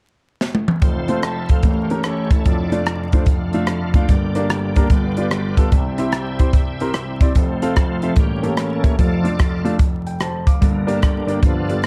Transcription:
0.41 snare
0.55 high tom
0.68 mid tom
0.82 F1 F2 A3 C4 F4 C5, kick, closed hi-hat
1.08 A3 C4 F4 C5, closed hi-hat
1.23 C5 E5 A5, cross-stick, closed hi-hat
1.49 A4 C5 F5, kick, closed hi-hat
1.63 A1 A2 A3 C4 G4 A#4, kick, closed hi-hat
1.70 C#4
1.90 A3 C#4 G4 A#4, closed hi-hat
2.04 C#4 G4 A4 C#5, cross-stick, closed hi-hat
2.31 E4 A4 C#5, kick, cross-stick, closed hi-hat
2.46 F1 F2 A3 D4 F4 D5, kick, closed hi-hat
2.72 A3 D4 F4 D5, cross-stick, closed hi-hat
2.86 cross-stick, closed hi-hat
3.12 A3 D4 F4 C5 D5, kick, closed hi-hat
3.26 F5, kick, closed hi-hat
3.53 A3 D4 F4 E5 F5, closed hi-hat
3.67 F5, cross-stick, closed hi-hat
3.94 A3 D4 F4 F5 G5, kick, closed hi-hat
4.07 G1 G2 A#3 D4 G4 D5, kick, closed hi-hat
4.35 A#3 D4 G4 D5, cross-stick, closed hi-hat
4.50 cross-stick, closed hi-hat
4.76 A#3 D4 G4 A#4, kick, closed hi-hat
4.90 G1 G2 B3 F4 G4 D5, kick, closed hi-hat
5.17 B3 F4 G4 D5, closed hi-hat
5.31 cross-stick, closed hi-hat
5.57 B3 F4 G4 A4, kick, cross-stick, closed hi-hat
5.72 C2 C3 C4 E4 G4 E5, kick, closed hi-hat
5.98 C4 E4 G4 E5, cross-stick, closed hi-hat
6.12 cross-stick, closed hi-hat
6.39 C4 E4 G4 C5, kick, closed hi-hat
6.53 kick, closed hi-hat
6.80 C4 E4 G4 A#4, closed hi-hat
6.94 cross-stick, closed hi-hat
7.21 C4 E4 G4 D5, kick, cross-stick, closed hi-hat
7.35 F1 F2 F3 A3 C4, kick, closed hi-hat
7.62 C4 F4 A4 F5, cross-stick, closed hi-hat
7.76 A3 C4 F4, kick, cross-stick, closed hi-hat
8.02 C4 F4 A4 E5, closed hi-hat
8.16 A1 A2 G3 A#3 C#4, kick, closed hi-hat
8.20 G4
8.43 A#3 G4 A4 C#5, closed hi-hat
8.57 A4, cross-stick, closed hi-hat
8.83 A#3 G4 A4 C#5 E5, kick, cross-stick, closed hi-hat
8.98 F1 F2 F3 A3 F4 A4 D5, kick, closed hi-hat
9.24 A3 D4 F4 D5, closed hi-hat
9.39 kick, cross-stick, closed hi-hat
9.65 A3 D4 F4 D5, closed hi-hat
9.79 kick, closed hi-hat
10.07 G5, closed hi-hat
10.20 C5 A5, cross-stick, closed hi-hat
10.47 F5 D6, kick, cross-stick, closed hi-hat
10.61 G1 G2 D3 A#3, kick, closed hi-hat
10.87 A#3 D4 G4 D5, closed hi-hat
10.97 A4
11.02 A#3 D4 G4, kick, cross-stick, closed hi-hat
11.27 A#3 D4 G4 D5, closed hi-hat
11.43 G1 G2 F3 B3 D4 F4 A4, kick, closed hi-hat
11.69 B3 F4 G4 D5, closed hi-hat
11.83 cross-stick, closed hi-hat

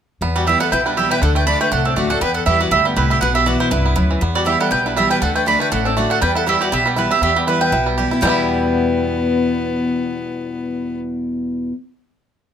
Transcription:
0.21 E2 B3
0.36 G3 F#4 D5
0.47 E3 G3 B3 E4 G4 E5
0.60 B3 E4 A4 F#5
0.72 B1 B2 E4 B4 G5
0.86 G3 D4 B4
0.97 E3 G3 B3 E4 G4 E5
1.11 E4 B4 G5
1.22 D2 D3 D4 A4 F#5
1.35 A3 B4 G5
1.47 D3 A3 D4 F#4 D5 B5
1.61 A3 B4 G5
1.72 C2 A2 D4 A4 F#5
1.85 C4 D4 A4
1.96 D2 D3 A3 D4 F#4 D5
2.10 D4 F#4 A4 F#5
2.21 E2 B3 B4 G5
2.34 A4 F#5
2.46 E2 E3 G3 B3 E4 G4 E5
2.60 B3 F#4 D5
2.71 D2 G2 E4 G4 E5
2.85 G3 B3 G4
2.96 C2 A2 E4 G4 B4
3.10 E4 G4 E5
3.21 B1 B2 B3 B4 F#5
3.35 B3 G4 E5
3.46 E3 B3 E4 F#4 D5
3.60 B3 E4 C5
3.71 C2 G2 E4 B4
3.86 B3
3.96 D2 F#2 B3
4.11 E3
4.21 E2 B3
4.35 G3 F#4 D5
4.45 E3 G3 B3 E4 G4 E5
4.60 G3 A4 F#5
4.71 B1 B2 B3 B4 G5
4.85 D4 E4 B4
4.96 E3 G3 B3 E4 G4 E5
5.10 B3 B4 G5
5.21 D2 D3 D4 A4 F#5
5.35 A3 B4 G5
5.46 D3 A3 D4 F#4 D5 B5
5.60 A3 B4 G5
5.72 A1 A2 D4 A4 F#5
5.85 C4 D4 A4
5.97 D3 A3 D4 F#4 D5
6.10 D4 A4 F#5
6.21 E2 G3 B4 G5
6.35 E4 A4 F#5
6.46 E3 G3 B3 E4 G4 E5
6.60 F#4 G4 D5
6.71 B1 B2 B3 G4 E5
6.86 G3 B3 G4
6.96 E3 G3 B3 E4 B4
7.11 B3 E4 G4 E5
7.21 E2 B3 G4 E5
7.36 G3 B3 G4
7.47 E3 G3 B3 E4 B4
7.61 B3 B4 G5
7.72 B1 B2 E4
7.86 G3
7.98 E3 G3 B3 E4 G4
8.11 B3 E4
8.21 E2 B2 E3 G3 B3 E4 G5
8.25 B3 E4 G4

